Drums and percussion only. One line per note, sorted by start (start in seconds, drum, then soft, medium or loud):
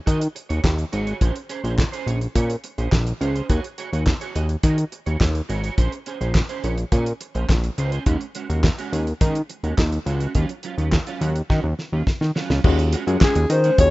0.07 kick loud
0.07 closed hi-hat medium
0.21 closed hi-hat medium
0.36 closed hi-hat medium
0.50 closed hi-hat soft
0.64 kick loud
0.64 snare loud
0.64 clap medium
0.79 closed hi-hat soft
0.93 closed hi-hat medium
1.07 closed hi-hat soft
1.21 kick loud
1.21 closed hi-hat medium
1.36 closed hi-hat soft
1.49 closed hi-hat medium
1.65 closed hi-hat soft
1.78 kick loud
1.78 snare loud
1.78 clap medium
1.93 closed hi-hat medium
2.08 closed hi-hat medium
2.21 closed hi-hat soft
2.35 kick loud
2.35 closed hi-hat medium
2.50 closed hi-hat medium
2.64 closed hi-hat medium
2.78 closed hi-hat soft
2.92 kick medium
2.92 snare loud
2.92 clap medium
3.07 closed hi-hat soft
3.21 closed hi-hat medium
3.36 closed hi-hat soft
3.50 kick loud
3.50 closed hi-hat medium
3.64 closed hi-hat soft
3.78 closed hi-hat medium
3.93 closed hi-hat soft
4.07 kick loud
4.07 snare loud
4.07 clap medium
4.21 closed hi-hat medium
4.36 closed hi-hat medium
4.49 closed hi-hat soft
4.63 kick loud
4.63 closed hi-hat medium
4.78 closed hi-hat medium
4.92 closed hi-hat medium
5.06 closed hi-hat soft
5.21 kick loud
5.21 snare loud
5.21 clap medium
5.35 closed hi-hat soft
5.50 closed hi-hat medium
5.64 closed hi-hat soft
5.78 kick loud
5.78 closed hi-hat medium
5.92 closed hi-hat soft
6.06 closed hi-hat medium
6.21 closed hi-hat soft
6.35 kick loud
6.35 snare loud
6.35 clap medium
6.49 closed hi-hat soft
6.64 closed hi-hat medium
6.78 closed hi-hat medium
6.92 kick loud
6.92 closed hi-hat medium
7.06 closed hi-hat medium
7.21 closed hi-hat medium
7.35 closed hi-hat soft
7.49 kick medium
7.49 snare loud
7.49 clap medium
7.64 closed hi-hat soft
7.78 closed hi-hat medium
7.92 closed hi-hat soft
8.06 kick loud
8.06 closed hi-hat medium
8.21 closed hi-hat soft
8.35 closed hi-hat medium
8.50 closed hi-hat medium
8.64 kick loud
8.64 snare loud
8.64 clap medium
8.79 closed hi-hat medium
8.93 closed hi-hat medium
9.07 closed hi-hat soft
9.21 kick loud
9.21 closed hi-hat loud
9.35 closed hi-hat medium
9.49 closed hi-hat medium
9.64 closed hi-hat soft
9.78 kick loud
9.78 snare loud
9.78 clap medium
9.92 closed hi-hat soft
10.07 closed hi-hat medium
10.20 closed hi-hat soft
10.35 kick loud
10.35 closed hi-hat medium
10.49 closed hi-hat soft
10.63 closed hi-hat medium
10.78 closed hi-hat soft
10.92 kick loud
10.92 snare loud
10.92 clap medium
11.07 closed hi-hat medium
11.21 closed hi-hat medium
11.36 closed hi-hat soft
11.50 kick loud
11.50 snare medium
11.79 snare medium
12.07 kick loud
12.07 snare medium
12.22 snare medium
12.36 snare medium
12.50 snare medium
12.64 kick loud
12.64 crash medium
12.79 closed hi-hat medium
12.93 closed hi-hat medium
13.08 closed hi-hat medium
13.21 kick loud
13.21 snare loud
13.21 clap medium
13.35 closed hi-hat medium
13.50 closed hi-hat loud
13.64 closed hi-hat medium
13.78 kick loud
13.78 closed hi-hat loud